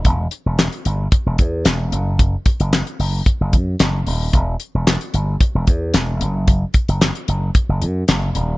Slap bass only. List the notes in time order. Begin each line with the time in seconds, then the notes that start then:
0.05 E1
0.46 E1
0.85 G1
1.26 E1
1.39 E2
1.65 E1
1.92 F#1
2.60 F#1
2.99 F#1
3.41 F#1
3.53 F#2
3.80 F#1
4.07 D#1
4.33 E1
4.75 E1
5.14 G1
5.55 E1
5.68 E2
5.94 E1
6.21 F#1
6.88 F#1
7.28 F#1
7.69 F#1
7.82 F#2
8.08 F#1
8.35 D#1